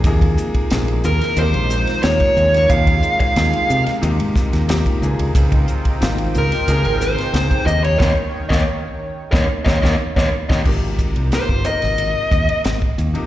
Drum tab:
CC |----------------|----------------|----------------|----------------|
RD |xx-xxx-xxx-xxx-x|xx-xxx-xxx-xxx-x|xx-xxx-xxx-xxx-x|----------------|
HH |p-p-p-p-p-p-p-p-|p-p-p-p-p-p-p-p-|p-p-p-p-p-p-p-p-|----------------|
SD |----o--o--ooo--o|----o--o--ooo---|----o--o--ooo---|o--o----o-oo-o-o|
BD |oo-o---------o--|oo-o------o--o--|oo-o---------o--|o--o----o-oo-o-o|

CC |x---------------|
RD |--xxx-xxx-xxx-xx|
HH |--p-p-p-p-p-p-p-|
SD |----o--o----o---|
BD |o-o--o----o--o--|